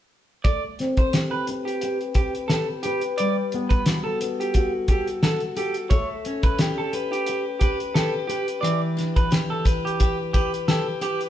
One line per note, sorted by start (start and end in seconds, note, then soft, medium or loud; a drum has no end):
0.44 3.19 A3 medium
0.44 0.62 D5 medium
0.44 kick loud
0.44 closed hi-hat medium
0.79 3.26 C4 medium
0.79 snare soft
0.79 closed hi-hat soft
0.97 1.13 C5 medium
0.97 kick medium
0.97 closed hi-hat soft
1.13 1.82 G4 medium
1.13 snare loud
1.13 closed hi-hat medium
1.31 1.46 B4 medium
1.47 2.17 B4 soft
1.47 closed hi-hat medium
1.65 1.98 G4 medium
1.65 closed hi-hat soft
1.81 2.51 G4 medium
1.81 closed hi-hat medium
2.01 closed hi-hat soft
2.14 2.33 G4 medium
2.14 2.85 B4 medium
2.14 kick medium
2.14 closed hi-hat medium
2.35 closed hi-hat soft
2.48 3.87 G4 medium
2.48 2.66 A4 medium
2.48 snare medium
2.48 closed hi-hat medium
2.83 3.01 G4 medium
2.83 4.21 B4 medium
2.83 closed hi-hat medium
3.01 closed hi-hat soft
3.18 5.91 G3 medium
3.18 3.35 D5 medium
3.18 closed hi-hat medium
3.52 6.26 B3 medium
3.52 closed hi-hat soft
3.69 3.84 B4 medium
3.69 kick medium
3.69 closed hi-hat soft
3.86 4.54 F#4 soft
3.86 snare loud
3.86 closed hi-hat medium
4.04 4.19 A4 medium
4.21 4.90 A4 medium
4.21 closed hi-hat medium
4.40 4.72 G4 medium
4.40 closed hi-hat soft
4.54 5.22 F#4 medium
4.54 kick medium
4.54 closed hi-hat medium
4.88 5.07 G4 medium
4.88 5.56 A4 medium
4.88 kick medium
4.88 closed hi-hat medium
5.07 closed hi-hat soft
5.23 5.98 F#4 medium
5.23 5.40 A4 medium
5.23 snare loud
5.23 closed hi-hat medium
5.40 closed hi-hat soft
5.57 5.75 G4 medium
5.57 6.63 A4 medium
5.57 closed hi-hat medium
5.74 closed hi-hat soft
5.90 8.64 A3 medium
5.90 6.08 C#5 medium
5.90 kick loud
5.90 closed hi-hat medium
6.25 8.71 C#4 soft
6.25 closed hi-hat soft
6.43 6.58 B4 medium
6.43 kick medium
6.43 closed hi-hat soft
6.59 7.29 G4 medium
6.59 snare loud
6.59 closed hi-hat medium
6.78 6.92 A4 medium
6.93 7.61 B4 medium
6.93 closed hi-hat medium
7.12 7.44 G4 medium
7.12 closed hi-hat soft
7.26 7.96 G4 medium
7.26 closed hi-hat medium
7.59 7.78 G4 medium
7.59 8.29 B4 medium
7.59 kick medium
7.59 closed hi-hat medium
7.80 closed hi-hat soft
7.94 9.30 G4 medium
7.94 8.13 A4 medium
7.94 snare medium
7.94 closed hi-hat medium
8.27 8.46 G4 medium
8.27 9.65 B4 medium
8.27 closed hi-hat medium
8.48 closed hi-hat soft
8.61 11.29 E3 medium
8.61 8.80 D5 medium
8.61 closed hi-hat medium
8.97 11.29 D4 soft
8.97 snare soft
8.97 closed hi-hat soft
9.16 9.31 B4 medium
9.16 kick medium
9.16 closed hi-hat soft
9.31 9.99 G4 medium
9.31 snare medium
9.31 closed hi-hat medium
9.50 9.65 A4 medium
9.65 10.33 B4 medium
9.65 kick medium
9.65 closed hi-hat medium
9.85 10.17 G4 medium
9.85 closed hi-hat soft
10.00 10.68 G4 medium
10.00 kick medium
10.00 closed hi-hat medium
10.33 10.51 G4 medium
10.33 11.01 B4 medium
10.33 kick medium
10.33 closed hi-hat medium
10.54 closed hi-hat soft
10.68 11.29 G4 medium
10.68 10.86 A4 medium
10.68 snare loud
10.68 closed hi-hat medium
11.01 11.20 G4 medium
11.01 11.29 B4 medium
11.01 closed hi-hat medium
11.21 closed hi-hat soft